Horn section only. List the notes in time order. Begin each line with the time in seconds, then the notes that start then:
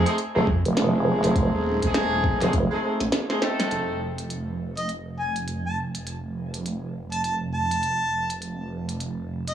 0.06 G#3 A3 C4 D#4 G#4
0.35 G#3 A3 C4 D#4 G#4
0.76 G#3 A3 C4 D#4 G#4
1.83 G#3 A3 C4 D#4 G#4
2.41 G#3 A3 C4 D#4 G#4
2.71 G#3 A3 C4 D#4 G#4
2.83 G#3 A3 C4 D#4 G#4
3.30 G#3 A3 C4 D#4 G#4
3.42 A3 C4 D#4 A4